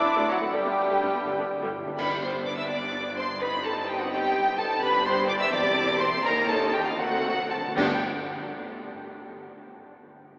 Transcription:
Already playing: cor anglais D4, french horn section D4, bassoon E4, violin section D5 D6, flute D6
0.17 cello section D2, viola section F#3 A3
0.28 cor anglais F#3, french horn section F#3, violin section F#4 F#5, flute F#5
0.41 cello section D2, viola section A3 C4
0.52 double bass section G1, cello section G2, timpani G2, viola section D3 G3, cor anglais G3, french horn section G3, bassoon D4, violin section G4 G5, flute G5
0.62 timpani G2, viola section B3 D4
0.66 cello section G2, timpani G2
0.77 timpani G2
0.85 timpani G2
0.89 cello section G2, timpani G2, viola section D3 G3
1.00 double bass section G1, timpani G2, cello section G2, viola section B3 D4
1.09 timpani G2
1.13 cello section G2, timpani G2, viola section G3 B3
1.24 double bass section G1, timpani G2, cello section G2, viola section D3 G3
1.31 timpani G2
1.38 cello section G2, timpani G2, viola section B3 D4
1.47 timpani G2
1.54 timpani G2
1.62 timpani G2, cello section G2, viola section D3 G3
1.69 timpani G2
1.77 timpani G2
1.85 timpani G2, cello section G2, viola section G3 B3
1.98 double bass section G1, timpani G2, cello section G2, viola section B3 D4, violin section B4 B5, concert bass drum, crash
2.22 violin section C5 C6
2.45 violin section D5 D6
2.57 violin section E5 E6
2.69 violin section D5 D6
3.16 violin section C5 C6
3.40 viola section C4 D#4, violin section B4 B5
3.64 violin section A4 A5
3.88 violin section G4 G5
4.00 violin section F#4 F#5
4.11 violin section G4 G5
4.57 violin section A4 A5
4.81 double bass section G1, timpani G2, cello section G2, viola section D4 G4, violin section B4 B5
5.04 violin section C5 C6
5.28 violin section D5 D6
5.40 violin section E5 E6
5.51 double bass section E1, cello section E2, viola section C4, violin section D5 D6
6.00 violin section C5 C6
6.24 cello section D#2, double bass section D#2, viola section C#4 D#4, violin section A#4 A#5
6.48 violin section A4 A5
6.74 violin section G4 G5
6.86 violin section F4 F5
6.99 double bass section D2, cello section D2, timpani D3, viola section A3 C4, violin section F#4 F#5
7.07 timpani D3
7.24 timpani D3
7.32 timpani D3
7.41 timpani D3
7.49 timpani D3, violin section A4 A5
7.58 timpani D3
7.66 timpani D3
7.76 double bass section G1, cello section G2, timpani G2, viola section B3 D4, violin section G4 G5, concert bass drum, crash

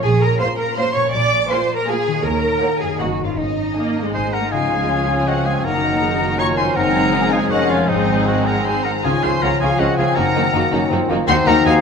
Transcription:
Already playing: harp A#2 F3 C#4 F4 G#4
0.00 double bass section A#1, cello section G#4, harp A#4, violin section G#5
0.21 cello section A#4, violin section A#5
0.40 viola section A#3 F4, cello section C5, violin section C#5 F5 C6
0.58 cello section A#4, violin section A#5
0.76 viola section A#3 F4, cello section C5, violin section C#5 F5 C6
0.95 harp A#2, cello section C#5, violin section C#6
1.00 harp A#3
1.05 harp G#4
1.09 harp A#4
1.13 double bass section A#1, cello section D5, violin section D6
1.50 viola section A#3 F4, cello section C5, violin section F5 G#5 C6
1.75 cello section A#4, violin section A#5
1.87 viola section A#3 F4, cello section G#4, violin section F5 G#5
2.07 harp D#3
2.12 harp A#3
2.16 harp F#4
2.21 cello section A#4, harp C#5, violin section A#5
2.25 double bass section D#2
2.62 viola section A#3 D#4, violin section C#5 F#5
2.80 harp F#2, cello section G#4, violin section G#5
2.86 harp A#3
2.91 harp D#4
2.95 harp D#5
2.99 double bass section F#1, viola section A#3 D#4, cello section F#4, violin section D#5 F#5 A#5
3.20 harp G#2
3.24 harp C#4, cello section F4, violin section F5
3.28 harp D#4
3.33 harp D#5
3.38 double bass section G#1, cello section D#4, violin section D#5
3.76 viola section A#3, violin section D#5 G#5
3.96 harp G#2
4.01 viola section G#3, harp C4
4.05 harp D#4
4.10 harp D#5, violin section G#5
4.14 double bass section G#1, oboe C5, violin section D#5 C6, flute G#5
4.32 oboe A#4, flute F#5, violin section A#5
4.40 viola section A#3
4.51 cello section C#2, double bass section C#2, harp C#3, french horn section F3 C#4, viola section G#3 C#4, bassoon D#4, violin section F4 G#4 G#5, clarinet F4, oboe G#4, flute F5
4.71 harp C#4
4.90 bassoon C#4, harp F4
5.08 harp G#4
5.27 bassoon C4, oboe F#4, harp C#5, flute D#5, violin section F#5
5.46 harp F4, oboe G#4, flute F5, violin section G#5
5.64 double bass section F#1, harp F#2, cello section F#2, french horn section D#3 A#3, viola section D#3 A#3, bassoon A#3, clarinet D#4, violin section D#4 F#4 A#5, oboe A#4, flute F#5
5.83 harp D#3, bassoon D#4
6.02 harp D#4, clarinet G#4
6.21 clarinet F#4, harp F#4
6.38 bassoon C#4, clarinet F4, harp A#4, oboe C#5, flute A#5, violin section C#6
6.57 harp D#4, oboe C5, flute G#5, violin section C6
6.75 double bass section F#1, cello section F#2, harp F#2, french horn section G#3 C4, viola section G#3 C4, bassoon C4, clarinet D#4, violin section D#4 G#4 A#5, oboe A#4, flute F#5
6.94 harp F#3, clarinet D#4
7.14 bassoon D#4, harp D#4
7.32 bassoon D#4, harp G#4, oboe G#4, flute F5, violin section G#5
7.50 double bass section F1, cello section F2, harp F2, viola section G#3 C#4, french horn section C#4, bassoon C#4, violin section C#4 G#4 F#5, oboe F#4, clarinet A#4, flute D#5
7.70 harp C#4 C#5, oboe F4, flute C#5, violin section F5
7.88 double bass section G#1, cello section G#2, harp G#2, viola section G#3 C4, bassoon C4, french horn section C4, oboe D#4, violin section D#4 G#4 D#5, clarinet G#4, flute C5
8.08 harp D#3
8.27 harp D#4, oboe F#4, flute D#5, violin section F#5
8.46 harp G#4, oboe A#4, flute F#5, violin section A#5
8.65 viola section G#3 C4, violin section D#4 G#4 C6, oboe C5, harp C5, flute G#5
8.85 harp D#4, oboe A#4, flute F#5, violin section A#5
9.04 double bass section C#2, cello section C#3, harp C#3, french horn section F3 F4, viola section G#3 C#4, bassoon C#4, clarinet F4, violin section F4 G#4 G#5, oboe G#4, flute F5
9.22 double bass section C#2, cello section C#3, viola section G#3 C#4, harp C#4, violin section F4 G#4 C6, oboe C5, flute G#5
9.42 double bass section C#2, cello section C#3, viola section G#3 C#4, bassoon C#4, harp F4, clarinet F4, violin section F4 G#4 A#5, oboe A#4, flute F#5
9.60 double bass section C#2, cello section C#3, viola section G#3 C#4, violin section F4 G#4 G#5, oboe G#4, harp G#4, flute F5
9.79 double bass section C#2, cello section C#3, viola section G#3 C#4, bassoon C4, violin section F4 G#4 F#5, oboe F#4, clarinet G#4, harp C#5, flute D#5
9.98 double bass section C#2, cello section C#3, viola section G#3 C#4, harp F4, violin section F4 G#4 G#5, oboe G#4, flute F5
10.16 double bass section F#1, harp F#2, cello section F#2, viola section D#3 A#3, french horn section A#3 D#4, violin section D#4 F#4 A#5, clarinet D#4, oboe A#4, flute F#5
10.35 double bass section F#1, cello section F#2, viola section D#3 A#3, harp D#3, violin section D#4 F#4
10.53 double bass section F#1, cello section F#2, viola section D#3 A#3, bassoon A#3, violin section D#4 F#4, harp D#4, clarinet F#4
10.72 double bass section F#1, cello section F#2, viola section D#3 A#3, bassoon C#4, violin section D#4 F#4, harp F#4
10.90 double bass section F#1, cello section F#2, viola section D#3 A#3, bassoon C4, violin section D#4 F#4, clarinet F4, harp A#4
11.09 double bass section F#1, cello section F#2, viola section D#3 A#3, bassoon A#3, harp D#4, violin section D#4 F#4
11.27 double bass section D#2, cello section D#2, viola section D#3 A#3, harp D#3, bassoon C4, clarinet D#4, violin section D#4 F#4 C6, french horn section F#4, oboe C5, flute F#5
11.46 double bass section D#2, cello section D#2, viola section D#3 A#3, harp F#3, violin section D#4 F#4 A#5, oboe A#4, flute F#5
11.65 double bass section D#2, cello section D#2, viola section D#3 A#3, violin section D#4 F#4 G#5, oboe G#4, harp A#4, flute F5

